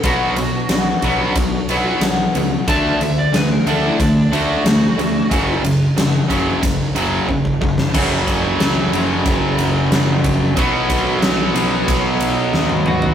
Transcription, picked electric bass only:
0.04 B1
0.36 B1
0.69 B1
1.02 B1
1.35 B1
1.68 B1
2.02 B1
2.35 C#2
2.67 D2
2.99 D2
3.33 D2
3.65 D2
4.00 D2
4.33 D2
4.65 D2
4.98 D2
5.31 F#1
5.63 F#1
5.96 F#1
6.30 F#1
6.63 F#1
6.95 F#1
7.28 F#1
7.61 F#1
7.94 F#1
8.60 C#2
8.92 F#1
9.26 F#1
9.58 F#1
9.90 F#1
10.24 F#1
10.57 B1
10.90 B1
11.22 B1
11.55 B1
11.88 B1
12.20 B1
12.53 D#2

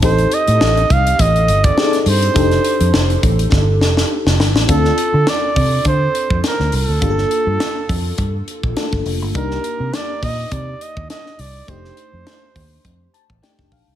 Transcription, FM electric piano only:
0.02 C4 D#4 G4 A4
1.77 C4 D#4 G4 G#4
1.85 A4
2.34 D4 D#4 G4 A4
4.68 C4 D4 F4 A4
7.01 A#3 D4 F4 G4
7.10 A4
8.76 A3 D4 F4 A4
8.82 A#3
9.34 A#3 D4 D#4 G4
11.67 A3 D4 D#4 G4
13.14 A5
13.42 A3 D4 D#4 G4 G5
13.72 F5

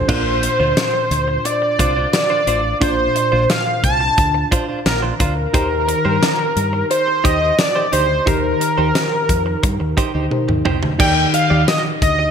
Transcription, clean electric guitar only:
0.08 D4 F4 C5
0.26 muted clean electric guitar stroke
0.43 muted clean electric guitar stroke
0.60 D4 F4 C5
0.77 muted clean electric guitar stroke
0.94 muted clean electric guitar stroke
1.28 muted clean electric guitar stroke
1.45 muted clean electric guitar stroke
1.62 muted clean electric guitar stroke
1.79 D4 F4 C5
1.96 D4 F4 C5
2.13 muted clean electric guitar stroke
2.30 D4 F4 C5
2.47 D4 F4 C5
2.65 muted clean electric guitar stroke
2.81 D4 F4 C5
2.98 muted clean electric guitar stroke
3.15 muted clean electric guitar stroke
3.32 D4 F4 C5
3.49 muted clean electric guitar stroke
3.66 muted clean electric guitar stroke
4.00 muted clean electric guitar stroke
4.18 muted clean electric guitar stroke
4.34 muted clean electric guitar stroke
4.51 D4 F4 C5
4.68 D4 F4 C5
4.85 muted clean electric guitar stroke
5.02 D4 F4 C5
5.19 D4 F4 C5
5.54 D#4 G4 C5
5.71 muted clean electric guitar stroke
5.88 muted clean electric guitar stroke
6.05 D#4 G4 C5
6.22 muted clean electric guitar stroke
6.39 muted clean electric guitar stroke
6.73 muted clean electric guitar stroke
6.90 muted clean electric guitar stroke
7.07 muted clean electric guitar stroke
7.24 D#4 G4 C5
7.41 D#4 G4 C5
7.58 muted clean electric guitar stroke
7.75 D#4 G4 C5
7.92 D#4 G4 C5
8.10 muted clean electric guitar stroke
8.26 D#4 G4 C5
8.44 muted clean electric guitar stroke
8.60 muted clean electric guitar stroke
8.78 D#4 G4 C5
8.95 muted clean electric guitar stroke
9.12 muted clean electric guitar stroke
9.46 muted clean electric guitar stroke
9.63 muted clean electric guitar stroke
9.80 muted clean electric guitar stroke
9.97 D#4 G4 C5
10.14 D#4 G4 C5
10.48 muted clean electric guitar stroke
10.65 D#4 G4 C5
10.82 muted clean electric guitar stroke
10.99 D#4 G4 D5
11.16 muted clean electric guitar stroke
11.33 muted clean electric guitar stroke
11.50 D#4 G4 D5
11.67 muted clean electric guitar stroke
11.85 muted clean electric guitar stroke
12.19 muted clean electric guitar stroke

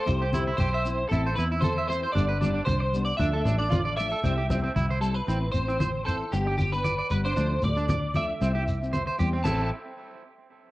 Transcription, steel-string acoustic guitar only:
0.06 C4 E4 G4
0.32 C4 E4 G4
0.85 C4 E4
1.11 C4 E4, muted steel-string acoustic guitar stroke
1.35 E3 C4 E4
1.50 C4 E4
1.88 E3 C4 E4
2.15 G3 B3 D4
2.41 G3 B3 D4
2.93 G3 B3 D4
3.19 F3 A3 D4
3.45 F3 A3 D4
3.59 A3 D4
3.98 F3 A3 D4
4.23 G3 C4 E4
4.50 G3 C4 E4
5.00 G3 C4 E4
5.27 E3 C4 E4
5.53 E3 C4 E4
5.67 C4 E4
6.06 E3 C4 E4
6.33 G3 B3 D4
6.46 B3 D4
6.72 B3 D4
7.10 G3 B3 D4
7.36 F3 A3 D4
7.63 F3 A3 D4
7.77 A3 D4
8.14 F3 A3 D4
8.40 G3 C4 E4
8.54 C4 E4
8.80 C4 E4
9.18 G3 C4 E4
9.44 C4 A4, muted steel-string acoustic guitar stroke

